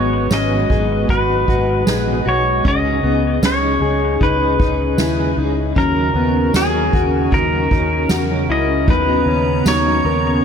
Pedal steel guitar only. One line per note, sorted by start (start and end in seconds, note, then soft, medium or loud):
0.00 0.33 C#5 loud
0.34 1.13 D#5 loud
1.10 2.30 B4 medium
2.29 2.68 C#5 medium
2.68 3.45 D#5 loud
3.45 4.25 C#5 medium
4.23 5.35 B4 medium
5.78 6.58 A#4 loud
6.56 7.36 G#4 medium
7.34 8.54 A#4 loud
8.52 8.87 D#5 loud
8.90 9.68 B4 loud
9.68 10.45 C#5 loud